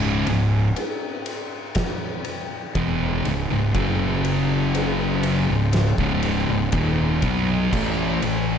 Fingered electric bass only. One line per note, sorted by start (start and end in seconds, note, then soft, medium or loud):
0.00 0.23 C#1 loud
0.28 0.74 C#1 medium
2.76 3.22 E1 loud
3.25 3.49 C#1 medium
3.51 3.74 C#1 medium
3.75 5.45 F#1 loud
5.50 5.96 C#1 medium
5.98 6.45 C#1 loud
6.50 6.72 C#1 medium
6.73 7.19 D#1 loud
7.23 7.69 B1 loud
7.73 8.19 A1 loud
8.24 8.58 A1 medium